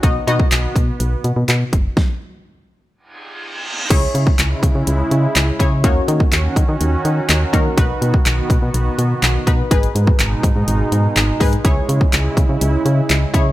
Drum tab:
CC |----------------|----------------|x---------------|----------------|
HH |x-x-x-x-x-x-x-x-|----------------|x-x-x-x-x-x-x-x-|x-x-x-x-x-x-x-x-|
CP |----x-------x---|----------------|----x-------x---|----x-------x---|
SD |----------------|o---------------|----------------|----------------|
BD |o--o--o-------o-|o---------------|o--o--o-------o-|o--o--o-------o-|

CC |----------------|----------------|----------------|
HH |x-x-x-x-x-x-x-x-|xxx-x-x-x-x-x-ox|x-x-x-x-x-x-x-x-|
CP |----x-------x---|----x-------x---|----x-------x---|
SD |----------------|----------------|----------------|
BD |o--o--o-------o-|o--o--o-------o-|o--o--o-------o-|